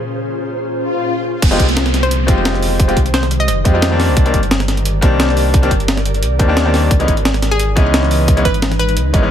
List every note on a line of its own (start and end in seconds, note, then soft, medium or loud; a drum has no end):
0.00 1.40 A#2 medium
0.00 1.40 C#4 medium
0.00 1.40 F4 medium
0.00 1.38 G#4 medium
0.00 1.40 G#4 medium
0.00 1.41 A#4 medium
0.00 1.40 C5 medium
0.00 1.41 C5 medium
0.74 swell medium
1.42 1.58 F1 loud
1.42 6.87 D#3 medium
1.42 3.97 G#3 medium
1.42 3.97 G4 medium
1.42 3.97 C5 medium
1.42 kick loud
1.42 closed hi-hat loud
1.42 crash loud
1.42 downlifter medium
1.51 1.63 G#3 medium
1.51 1.63 C4 medium
1.51 1.64 D#4 medium
1.51 1.64 F4 medium
1.51 1.64 G4 loud
1.51 closed hi-hat soft
1.59 2.30 C2 medium
1.59 kick medium
1.59 closed hi-hat medium
1.69 closed hi-hat soft
1.77 snare loud
1.77 closed hi-hat medium
1.86 snare soft
1.86 closed hi-hat soft
1.94 snare soft
1.94 closed hi-hat medium
2.03 2.23 C5 medium
2.03 closed hi-hat soft
2.11 closed hi-hat medium
2.27 2.95 F1 loud
2.27 2.86 G#3 loud
2.27 2.86 C4 medium
2.27 2.86 D#4 medium
2.27 2.87 F4 medium
2.27 2.87 G4 loud
2.27 kick loud
2.27 closed hi-hat medium
2.45 snare loud
2.45 closed hi-hat medium
2.54 snare soft
2.62 open hi-hat medium
2.80 kick loud
2.80 closed hi-hat medium
2.88 2.96 G#3 medium
2.88 2.96 C4 medium
2.88 2.96 D#4 medium
2.88 2.96 F4 medium
2.88 2.96 G4 loud
2.88 closed hi-hat soft
2.97 3.50 C2 medium
2.97 kick medium
2.97 closed hi-hat medium
3.06 closed hi-hat soft
3.14 3.35 C5 medium
3.14 snare loud
3.14 closed hi-hat loud
3.23 snare soft
3.23 closed hi-hat soft
3.31 closed hi-hat medium
3.40 3.45 D#5 medium
3.40 closed hi-hat soft
3.48 3.65 F1 medium
3.48 3.54 D#5 medium
3.48 closed hi-hat medium
3.65 4.10 F2 medium
3.65 3.72 G#3 medium
3.65 3.72 C4 medium
3.65 3.72 D#4 medium
3.65 3.72 F4 medium
3.65 3.72 G4 medium
3.65 kick loud
3.65 closed hi-hat medium
3.74 3.89 G#3 medium
3.74 3.89 C4 medium
3.74 3.89 D#4 medium
3.74 3.89 F4 medium
3.74 3.90 G4 loud
3.82 snare loud
3.82 closed hi-hat medium
3.91 4.23 D#3 loud
3.91 4.23 G3 medium
3.91 4.24 A#3 medium
3.91 4.24 C4 medium
3.91 4.24 D4 loud
4.00 6.88 G4 medium
4.00 6.88 A#4 medium
4.00 6.88 D5 medium
4.00 snare soft
4.00 open hi-hat medium
4.09 4.16 C2 medium
4.17 4.32 C2 loud
4.17 kick loud
4.17 closed hi-hat medium
4.25 4.38 D#3 medium
4.25 4.38 G3 medium
4.25 4.38 A#3 medium
4.25 4.38 C4 medium
4.25 4.38 D4 loud
4.25 closed hi-hat soft
4.34 5.04 G1 medium
4.34 kick medium
4.34 closed hi-hat medium
4.43 closed hi-hat soft
4.51 snare loud
4.51 closed hi-hat medium
4.60 snare soft
4.60 closed hi-hat soft
4.68 snare soft
4.68 closed hi-hat medium
4.77 closed hi-hat soft
4.85 closed hi-hat medium
5.01 5.70 C2 loud
5.01 5.60 D#3 loud
5.01 5.60 G3 medium
5.01 5.61 A#3 medium
5.01 5.61 C4 medium
5.01 5.61 D4 loud
5.01 kick loud
5.01 closed hi-hat medium
5.20 snare loud
5.20 closed hi-hat medium
5.29 snare soft
5.37 open hi-hat medium
5.54 kick loud
5.54 closed hi-hat medium
5.62 5.70 D#3 medium
5.62 5.70 G3 medium
5.62 5.70 A#3 medium
5.62 5.70 C4 medium
5.62 5.70 D4 loud
5.62 closed hi-hat soft
5.71 6.24 G1 medium
5.71 kick medium
5.71 closed hi-hat medium
5.80 closed hi-hat soft
5.88 snare loud
5.88 closed hi-hat medium
5.97 snare soft
5.97 closed hi-hat soft
6.05 closed hi-hat medium
6.14 closed hi-hat soft
6.23 6.39 C2 medium
6.23 closed hi-hat medium
6.39 6.90 D#2 medium
6.39 6.46 D#3 medium
6.39 6.46 G3 medium
6.39 6.46 A#3 medium
6.39 6.47 C4 medium
6.39 6.47 D4 medium
6.39 kick loud
6.39 closed hi-hat medium
6.48 6.63 D#3 medium
6.48 6.63 G3 medium
6.48 6.64 A#3 medium
6.48 6.64 C4 medium
6.48 6.64 D4 loud
6.57 snare loud
6.57 closed hi-hat medium
6.65 6.90 D#3 medium
6.65 6.90 G3 medium
6.65 6.90 A#3 medium
6.65 6.90 C4 medium
6.65 6.90 D4 loud
6.74 snare soft
6.74 open hi-hat medium
6.91 7.06 C#2 loud
6.91 9.31 E3 medium
6.91 9.31 G#3 medium
6.91 9.31 D#4 medium
6.91 9.31 B4 medium
6.91 kick loud
6.91 closed hi-hat medium
6.99 7.12 E3 medium
6.99 7.12 G#3 medium
6.99 7.12 B3 medium
6.99 7.12 C#4 medium
6.99 7.12 D#4 loud
6.99 closed hi-hat soft
7.08 7.78 G#1 medium
7.08 kick medium
7.08 closed hi-hat medium
7.17 closed hi-hat soft
7.25 snare loud
7.25 closed hi-hat medium
7.34 snare soft
7.34 closed hi-hat soft
7.42 snare soft
7.42 closed hi-hat medium
7.51 7.72 G#4 medium
7.51 closed hi-hat soft
7.60 closed hi-hat medium
7.76 8.44 C#2 loud
7.76 8.34 E3 loud
7.76 8.35 G#3 medium
7.76 8.35 B3 medium
7.76 8.35 C#4 medium
7.76 8.36 D#4 loud
7.76 kick loud
7.76 closed hi-hat medium
7.94 snare loud
7.94 closed hi-hat medium
8.03 snare soft
8.11 open hi-hat medium
8.28 kick loud
8.28 closed hi-hat medium
8.37 8.44 E3 medium
8.37 8.44 G#3 medium
8.37 8.44 B3 medium
8.37 8.45 C#4 medium
8.37 8.45 D#4 loud
8.37 closed hi-hat soft
8.45 8.98 G#1 medium
8.45 8.66 B4 medium
8.45 kick medium
8.45 closed hi-hat medium
8.54 closed hi-hat soft
8.62 snare loud
8.62 closed hi-hat medium
8.71 snare soft
8.71 closed hi-hat soft
8.79 9.06 B4 medium
8.79 closed hi-hat medium
8.89 closed hi-hat soft
8.97 9.13 C#2 medium
8.97 closed hi-hat medium
9.13 9.31 G#1 loud
9.13 9.20 E3 medium
9.13 9.21 G#3 medium
9.13 9.21 B3 medium
9.13 9.21 C#4 medium
9.13 9.21 D#4 loud
9.13 kick loud
9.13 closed hi-hat medium
9.22 9.31 E3 medium
9.22 9.31 G#3 medium
9.22 9.31 B3 medium
9.22 9.31 C#4 medium
9.22 9.31 D#4 loud